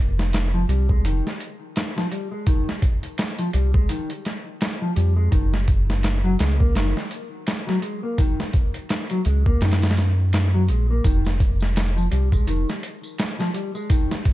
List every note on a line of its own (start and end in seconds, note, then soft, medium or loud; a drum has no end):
0.00 0.66 F1 medium
0.19 snare soft
0.33 snare loud
0.33 closed hi-hat medium
0.54 0.62 F3 medium
0.69 1.05 C2 medium
0.69 0.88 G3 medium
0.69 closed hi-hat medium
0.89 1.03 G#3 medium
0.89 kick medium
1.04 1.22 F1 medium
1.04 1.24 D#3 medium
1.04 closed hi-hat medium
1.27 snare soft
1.40 closed hi-hat medium
1.76 snare loud
1.76 closed hi-hat medium
1.97 2.05 F3 medium
1.97 snare soft
2.11 2.30 G3 medium
2.11 closed hi-hat medium
2.32 2.45 G#3 medium
2.47 2.67 D#3 medium
2.47 kick loud
2.47 closed hi-hat medium
2.69 snare soft
2.82 kick medium
2.82 closed hi-hat medium
3.03 closed hi-hat soft
3.18 snare loud
3.18 closed hi-hat medium
3.39 3.48 F3 medium
3.39 closed hi-hat soft
3.53 3.86 C2 medium
3.53 3.73 G3 medium
3.53 closed hi-hat medium
3.74 3.88 G#3 medium
3.74 kick medium
3.89 4.09 D#3 medium
3.89 closed hi-hat medium
4.10 closed hi-hat soft
4.25 snare medium
4.25 closed hi-hat medium
4.61 snare loud
4.61 closed hi-hat medium
4.82 4.90 F3 medium
4.96 5.29 F2 medium
4.96 5.15 G3 medium
4.96 closed hi-hat medium
5.16 5.31 G#3 medium
5.31 6.37 F#1 loud
5.31 5.52 D#3 medium
5.31 kick loud
5.31 closed hi-hat medium
5.54 snare soft
5.68 kick medium
5.68 closed hi-hat medium
5.90 snare soft
6.03 snare loud
6.03 closed hi-hat medium
6.24 6.33 F#3 loud
6.39 6.77 C#2 medium
6.39 6.58 G#3 medium
6.39 snare loud
6.39 closed hi-hat medium
6.59 6.74 A#3 medium
6.59 kick medium
6.75 6.94 F#1 medium
6.75 6.95 D#3 medium
6.75 snare loud
6.75 closed hi-hat medium
6.97 snare soft
7.11 closed hi-hat medium
7.47 snare loud
7.47 closed hi-hat medium
7.67 7.76 F#3 loud
7.67 snare soft
7.82 8.01 G#3 medium
7.82 closed hi-hat medium
8.03 8.17 A#3 medium
8.18 8.38 D#3 medium
8.18 kick loud
8.18 closed hi-hat medium
8.40 snare soft
8.53 kick medium
8.53 closed hi-hat medium
8.74 closed hi-hat soft
8.89 snare loud
8.89 closed hi-hat medium
9.10 9.19 F#3 medium
9.10 closed hi-hat soft
9.25 9.58 C#2 medium
9.25 9.44 G#3 medium
9.25 closed hi-hat medium
9.46 9.60 A#3 medium
9.46 kick medium
9.61 10.70 F#2 medium
9.61 9.81 D#3 medium
9.61 snare medium
9.61 closed hi-hat medium
9.72 snare medium
9.72 closed hi-hat medium
9.82 snare medium
9.82 closed hi-hat medium
9.90 snare medium
9.90 closed hi-hat medium
9.97 snare medium
9.97 closed hi-hat medium
10.33 snare loud
10.33 closed hi-hat medium
10.54 10.62 F#3 medium
10.68 11.01 A#1 medium
10.68 10.88 G#3 medium
10.68 closed hi-hat medium
10.90 11.03 A#3 medium
11.04 12.09 F1 loud
11.04 11.24 D#3 medium
11.04 kick loud
11.04 closed hi-hat medium
11.04 tambourine medium
11.25 snare medium
11.25 tambourine soft
11.40 kick medium
11.40 closed hi-hat medium
11.60 snare soft
11.60 tambourine medium
11.76 snare loud
11.76 closed hi-hat medium
11.76 tambourine medium
11.96 12.05 F3 medium
11.96 tambourine soft
12.11 12.49 C2 medium
12.11 12.30 G3 medium
12.11 closed hi-hat medium
12.32 12.46 G#3 medium
12.32 kick medium
12.32 tambourine medium
12.47 12.65 F1 medium
12.47 12.67 D#3 medium
12.47 closed hi-hat medium
12.47 tambourine medium
12.69 snare soft
12.69 tambourine soft
12.83 closed hi-hat medium
13.03 tambourine medium
13.18 snare loud
13.18 closed hi-hat medium
13.18 tambourine medium
13.39 13.48 F3 medium
13.39 snare soft
13.39 tambourine soft
13.54 13.73 G3 medium
13.54 closed hi-hat medium
13.75 13.88 G#3 medium
13.75 tambourine medium
13.90 14.09 D#3 medium
13.90 kick loud
13.90 closed hi-hat medium
13.90 tambourine medium
14.11 snare medium
14.11 tambourine soft
14.25 kick medium
14.25 closed hi-hat medium